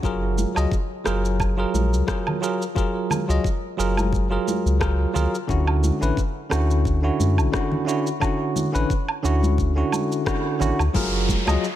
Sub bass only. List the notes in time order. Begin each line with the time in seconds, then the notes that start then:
0.03 F#1
0.56 C#2
1.06 F#1
1.74 A#1
1.92 C#2
3.29 C#2
3.79 F#1
4.65 C#2
5.15 C#2
5.49 D2
6.02 A1
6.51 D2
7.19 F#2
7.38 A1
8.75 A1
9.24 D2
10.60 A1
10.79 D2
10.95 F#1
11.47 C#2